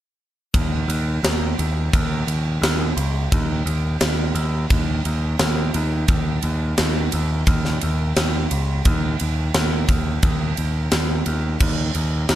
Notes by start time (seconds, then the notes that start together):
0.54 D#2, kick, ride
0.88 D#2, ride
1.23 D#2, snare, ride
1.59 D#2, ride
1.93 D#2, kick, ride
2.27 D#2, ride
2.61 D#2, snare, ride
2.97 C#2, ride
3.32 D#2, kick, ride
3.66 D#2, ride
4.01 D#2, snare, ride
4.34 D#2, ride
4.70 D#2, kick, ride
5.05 D#2, ride
5.39 D#2, snare, ride
5.74 D#2, ride
6.08 D#2, kick, ride
6.42 D#2, ride
6.78 D#2, snare, ride
7.12 D#2, ride
7.47 D#2, kick, ride
7.65 snare
7.81 D#2, ride
8.16 D#2, snare, ride
8.51 C#2, ride
8.85 D#2, kick, ride
9.20 D#2, ride
9.54 D#2, snare, ride
9.89 D#2, kick, ride
10.23 D#2, kick, ride
10.57 D#2, ride
10.92 D#2, snare, ride
11.26 D#2, ride
11.60 D#2, kick, crash
11.95 D#2, ride
12.29 D#2, snare, ride